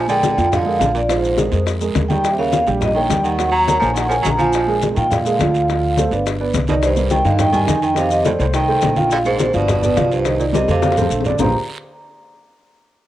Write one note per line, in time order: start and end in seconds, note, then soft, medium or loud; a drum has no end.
0.00 0.32 A#1 medium
0.00 0.10 G#5 loud
0.08 0.49 D3 medium
0.08 0.32 G#3 medium
0.08 0.32 G#4 medium
0.08 0.32 A#4 medium
0.08 0.50 G5 medium
0.08 high bongo soft
0.08 high conga soft
0.08 maracas medium
0.23 high bongo medium
0.23 high conga loud
0.23 short guiro medium
0.23 maracas medium
0.37 0.78 F2 medium
0.37 0.61 F3 medium
0.37 0.61 F4 medium
0.37 0.61 F5 medium
0.37 high bongo soft
0.37 high conga soft
0.37 short guiro medium
0.37 maracas soft
0.51 0.92 D3 medium
0.51 0.93 F5 medium
0.51 high bongo medium
0.51 high conga soft
0.51 low conga medium
0.51 long guiro medium
0.51 maracas medium
0.65 0.78 G#3 medium
0.65 0.78 G#4 medium
0.65 0.78 A#4 medium
0.65 high bongo soft
0.79 1.47 A#1 medium
0.79 1.03 F3 medium
0.79 1.04 F4 medium
0.79 1.04 F5 medium
0.79 high bongo medium
0.79 low bongo medium
0.79 high conga medium
0.79 short guiro medium
0.79 maracas medium
0.94 1.01 A#2 medium
0.94 1.03 D5 medium
0.94 high conga soft
0.94 short guiro medium
0.94 maracas soft
1.09 1.63 G#2 medium
1.09 1.33 F3 medium
1.09 1.33 F4 medium
1.09 1.64 C5 medium
1.09 1.33 F5 medium
1.09 high bongo medium
1.09 high conga soft
1.09 long guiro medium
1.09 maracas medium
1.24 high conga soft
1.24 maracas medium
1.37 1.49 G#3 medium
1.37 1.50 G#4 medium
1.37 1.50 A#4 medium
1.37 high bongo medium
1.37 high conga medium
1.37 short guiro medium
1.37 maracas medium
1.52 1.93 F2 medium
1.52 1.76 G#3 medium
1.52 1.76 G#4 medium
1.52 1.76 A#4 medium
1.52 high bongo soft
1.52 high conga soft
1.52 short guiro medium
1.52 maracas soft
1.66 high bongo medium
1.66 high conga soft
1.66 long guiro medium
1.66 maracas medium
1.81 2.05 G#3 medium
1.81 2.05 G#4 medium
1.81 2.05 A#4 medium
1.81 high bongo soft
1.81 high conga soft
1.81 maracas medium
1.95 2.62 D#2 medium
1.95 high bongo medium
1.95 low bongo medium
1.95 high conga medium
1.95 short guiro medium
1.95 maracas medium
2.08 2.30 D#3 medium
2.08 2.34 G3 medium
2.08 2.34 G4 medium
2.08 2.29 G5 medium
2.08 2.34 G5 medium
2.08 high bongo soft
2.08 high conga medium
2.08 short guiro medium
2.08 maracas soft
2.24 high bongo medium
2.24 high conga soft
2.24 long guiro medium
2.24 maracas medium
2.30 2.38 C3 medium
2.30 2.38 E5 medium
2.38 2.65 C#3 medium
2.38 2.62 A#3 medium
2.38 2.62 A#4 medium
2.38 2.62 C#5 medium
2.38 2.65 F5 medium
2.38 high bongo soft
2.38 high conga soft
2.52 high bongo medium
2.52 high conga medium
2.52 short guiro medium
2.52 maracas medium
2.67 3.07 A#1 medium
2.67 2.91 G3 medium
2.67 2.91 G4 medium
2.67 2.91 G5 medium
2.67 high bongo soft
2.67 short guiro medium
2.67 maracas soft
2.79 2.93 A#2 medium
2.79 2.95 D#5 medium
2.79 high bongo medium
2.79 high conga soft
2.79 low conga medium
2.79 long guiro medium
2.79 maracas medium
2.94 3.22 D#3 medium
2.94 3.08 A#3 medium
2.94 3.08 A#4 medium
2.94 3.08 C#5 medium
2.94 3.26 G5 medium
2.94 high bongo soft
2.94 high conga soft
3.10 3.77 D#2 medium
3.10 3.33 G3 medium
3.10 3.34 G4 medium
3.10 3.34 G5 medium
3.10 high bongo medium
3.10 low bongo medium
3.10 high conga medium
3.10 short guiro medium
3.10 maracas medium
3.23 3.51 D#3 medium
3.23 3.54 F#5 medium
3.23 short guiro medium
3.23 maracas soft
3.39 3.63 F#3 medium
3.39 3.63 F#4 medium
3.39 3.63 F#5 medium
3.39 high bongo medium
3.39 high conga soft
3.39 long guiro medium
3.39 maracas medium
3.52 3.79 F#3 loud
3.52 3.83 A#5 loud
3.52 high conga soft
3.67 3.79 A#3 medium
3.67 3.80 A#4 medium
3.67 3.80 C#5 medium
3.67 high bongo medium
3.67 high conga medium
3.67 short guiro medium
3.67 maracas medium
3.80 4.22 A#1 medium
3.80 3.93 F3 medium
3.80 4.05 A#3 medium
3.80 4.05 A#4 medium
3.80 4.06 C#5 medium
3.80 3.95 G#5 medium
3.80 high bongo soft
3.80 short guiro medium
3.80 maracas soft
3.93 4.08 D#3 medium
3.93 4.11 F#5 medium
3.93 high conga soft
3.93 long guiro medium
3.93 maracas medium
3.98 high bongo medium
4.09 4.16 F3 medium
4.09 4.34 A#3 medium
4.09 4.34 A#4 medium
4.09 4.34 C#5 medium
4.09 4.16 G#5 loud
4.09 high bongo soft
4.09 high conga soft
4.09 maracas medium
4.22 4.91 A#1 medium
4.22 4.30 F#3 medium
4.22 4.31 A#5 medium
4.22 high bongo medium
4.22 low bongo medium
4.22 high conga medium
4.22 short guiro medium
4.22 maracas medium
4.37 4.78 F3 medium
4.37 4.63 F3 medium
4.37 4.63 F4 medium
4.37 4.63 F5 medium
4.37 4.79 G#5 medium
4.37 high bongo soft
4.37 high conga medium
4.37 short guiro medium
4.37 maracas soft
4.53 high bongo medium
4.53 high conga soft
4.53 long guiro medium
4.53 maracas medium
4.67 4.91 G#3 medium
4.67 4.91 G#4 medium
4.67 4.91 A#4 medium
4.67 high bongo soft
4.67 high conga soft
4.82 high bongo medium
4.82 high conga medium
4.82 short guiro medium
4.82 maracas medium
4.95 5.37 A#2 medium
4.95 5.09 D#3 medium
4.95 5.20 F3 medium
4.95 5.21 F4 medium
4.95 5.21 F5 medium
4.95 5.11 G5 medium
4.95 high bongo soft
4.95 short guiro medium
4.95 maracas soft
5.10 6.21 D3 medium
5.10 6.21 F5 medium
5.10 high bongo medium
5.10 high conga soft
5.10 low conga medium
5.10 long guiro medium
5.10 maracas medium
5.25 5.37 G#3 medium
5.25 5.38 G#4 medium
5.25 5.38 A#4 medium
5.25 high bongo soft
5.25 high conga soft
5.25 maracas medium
5.39 6.06 D2 medium
5.39 5.64 F3 medium
5.39 5.64 F4 medium
5.39 5.64 F5 medium
5.39 high bongo medium
5.39 low bongo medium
5.39 high conga medium
5.39 short guiro medium
5.39 maracas medium
5.54 short guiro medium
5.54 maracas soft
5.68 5.92 F3 medium
5.68 5.93 F4 medium
5.68 5.93 F5 medium
5.68 high bongo medium
5.68 high conga soft
5.68 long guiro medium
5.68 maracas medium
5.84 high conga soft
5.97 6.09 A3 medium
5.97 6.10 A4 medium
5.97 6.09 C5 medium
5.97 high bongo medium
5.97 high conga medium
5.97 short guiro medium
5.97 maracas medium
6.11 6.51 G1 medium
6.11 6.36 B3 medium
6.11 6.35 B4 medium
6.11 6.36 D5 medium
6.11 high bongo soft
6.11 short guiro medium
6.11 maracas soft
6.26 high bongo medium
6.26 high conga soft
6.26 long guiro medium
6.26 maracas medium
6.40 6.63 B3 medium
6.40 6.64 B4 medium
6.40 6.64 D5 medium
6.40 high bongo soft
6.40 high conga soft
6.54 7.20 C2 medium
6.54 high bongo medium
6.54 low bongo medium
6.54 high conga medium
6.54 short guiro medium
6.54 maracas medium
6.67 6.75 B2 medium
6.67 6.92 D#3 medium
6.67 6.92 D#4 medium
6.67 6.76 D5 medium
6.67 6.93 D#5 medium
6.67 high bongo soft
6.67 high conga medium
6.67 short guiro medium
6.67 maracas soft
6.82 7.10 G2 medium
6.82 7.10 C5 medium
6.82 high bongo medium
6.82 long guiro medium
6.82 maracas medium
6.96 7.20 G3 medium
6.96 7.20 G4 medium
6.96 7.21 A#4 medium
6.96 high bongo soft
6.96 high conga soft
6.96 maracas medium
7.10 7.24 D#3 medium
7.10 7.26 G5 medium
7.10 high bongo medium
7.10 high conga medium
7.10 short guiro medium
7.10 maracas medium
7.24 7.65 G2 medium
7.24 7.39 D3 medium
7.24 7.49 D#3 medium
7.24 7.49 D#4 medium
7.24 7.49 D#5 medium
7.24 7.38 F5 medium
7.24 high bongo soft
7.24 short guiro medium
7.24 maracas soft
7.39 7.52 D#3 medium
7.39 7.55 G5 loud
7.39 high bongo medium
7.39 high conga soft
7.39 low conga medium
7.39 long guiro medium
7.39 maracas medium
7.52 7.80 D#3 medium
7.52 7.65 G3 medium
7.52 7.65 G4 medium
7.52 7.65 A#4 medium
7.52 7.81 G#5 loud
7.52 high bongo soft
7.52 high conga soft
7.52 low conga medium
7.52 maracas medium
7.67 8.34 F2 medium
7.67 7.91 D#3 medium
7.67 7.91 D#4 medium
7.67 7.91 D#5 medium
7.67 high bongo medium
7.67 low bongo medium
7.67 high conga medium
7.67 short guiro medium
7.67 maracas medium
7.82 7.96 D#3 medium
7.82 7.96 G5 medium
7.82 high conga soft
7.82 short guiro medium
7.82 maracas soft
7.95 8.10 C3 medium
7.95 8.19 D#3 medium
7.95 8.19 D#4 medium
7.95 8.20 D#5 medium
7.95 8.12 F5 medium
7.95 high bongo medium
7.95 high conga soft
7.95 long guiro medium
7.95 maracas medium
8.11 8.25 C3 medium
8.11 8.25 D#5 medium
8.11 high conga soft
8.11 maracas medium
8.24 8.32 A2 medium
8.24 8.36 A3 medium
8.24 8.37 A4 medium
8.24 8.37 C5 medium
8.24 8.31 D5 medium
8.24 high bongo medium
8.24 high conga medium
8.24 short guiro medium
8.24 maracas medium
8.39 8.80 C2 medium
8.39 8.46 A2 medium
8.39 8.63 A3 medium
8.39 8.63 A4 medium
8.39 8.46 C5 medium
8.39 8.63 C5 medium
8.39 high bongo soft
8.39 high conga soft
8.39 short guiro medium
8.39 maracas soft
8.54 9.08 D#3 medium
8.54 9.13 G5 loud
8.54 high bongo medium
8.54 long guiro medium
8.54 maracas medium
8.68 8.92 A3 medium
8.68 8.92 A4 medium
8.68 8.92 C5 medium
8.68 high bongo soft
8.81 9.49 A#1 medium
8.81 high bongo medium
8.81 low bongo medium
8.81 high conga medium
8.81 short guiro medium
8.81 maracas medium
8.96 9.20 F3 medium
8.96 9.20 F4 medium
8.96 9.20 F5 medium
8.96 high bongo soft
8.96 high conga medium
8.96 short guiro medium
8.96 maracas soft
9.10 9.18 D3 medium
9.10 9.17 F5 loud
9.10 high bongo medium
9.10 high conga soft
9.10 long guiro medium
9.10 maracas medium
9.25 9.53 G#2 medium
9.25 9.49 G#3 medium
9.25 9.49 G#4 medium
9.25 9.49 A#4 medium
9.25 9.55 C5 medium
9.25 high bongo soft
9.25 high conga soft
9.25 maracas medium
9.39 high bongo medium
9.39 high conga loud
9.39 short guiro medium
9.39 maracas medium
9.53 9.94 G1 medium
9.53 9.81 B2 medium
9.53 9.77 F3 medium
9.53 9.78 F4 medium
9.53 9.81 D5 medium
9.53 9.78 F5 medium
9.53 high bongo soft
9.53 high conga soft
9.53 short guiro medium
9.53 maracas soft
9.68 high bongo medium
9.68 high conga soft
9.68 low conga medium
9.68 long guiro medium
9.68 maracas medium
9.82 10.10 B2 medium
9.82 9.94 B3 medium
9.82 9.94 B4 medium
9.82 9.94 D5 medium
9.82 10.13 D5 medium
9.82 high bongo soft
9.82 high conga soft
9.82 low conga medium
9.82 maracas medium
9.96 10.63 C2 medium
9.96 10.20 F3 medium
9.96 10.20 F4 medium
9.96 10.20 F5 medium
9.96 high bongo medium
9.96 low bongo medium
9.96 high conga medium
9.96 short guiro medium
9.96 maracas medium
10.11 10.38 G2 medium
10.11 10.38 C5 medium
10.11 high conga soft
10.11 short guiro medium
10.11 maracas soft
10.25 10.49 D#3 medium
10.25 10.49 D#4 medium
10.25 10.49 D#5 medium
10.25 high bongo medium
10.25 high conga soft
10.25 long guiro medium
10.25 maracas medium
10.39 10.46 A#2 medium
10.39 10.47 D5 medium
10.39 high conga soft
10.39 maracas medium
10.53 10.68 C3 medium
10.53 10.65 G3 medium
10.53 10.65 G4 medium
10.53 10.65 A#4 medium
10.53 10.69 D#5 medium
10.53 high bongo medium
10.53 high conga medium
10.53 short guiro medium
10.53 maracas medium
10.68 11.08 F2 medium
10.68 11.09 C3 medium
10.68 10.92 A3 medium
10.68 10.92 A4 medium
10.68 10.92 C5 medium
10.68 11.09 F5 medium
10.68 high bongo soft
10.68 high conga medium
10.68 short guiro medium
10.68 maracas soft
10.82 high bongo loud
10.82 high conga medium
10.82 long guiro medium
10.82 maracas medium
10.92 high bongo medium
10.97 11.20 A3 medium
10.97 11.21 A4 medium
10.97 11.21 C5 medium
10.97 low conga medium
10.97 maracas medium
11.02 low bongo loud
11.10 11.36 A#1 medium
11.10 short guiro medium
11.10 maracas medium
11.21 low bongo medium
11.21 short guiro medium
11.25 11.38 D3 medium
11.25 11.38 D4 medium
11.25 11.38 D5 medium
11.25 low conga medium
11.25 maracas soft
11.30 low bongo medium
11.39 11.53 A#1 medium
11.39 11.53 G2 medium
11.39 11.53 A#3 medium
11.39 11.53 F4 medium
11.39 11.53 G4 medium
11.39 11.53 G#4 medium
11.39 11.54 A#4 medium
11.39 11.54 C5 medium
11.39 11.53 A#5 medium
11.39 low bongo loud
11.39 low conga medium
11.39 long guiro medium
11.39 maracas medium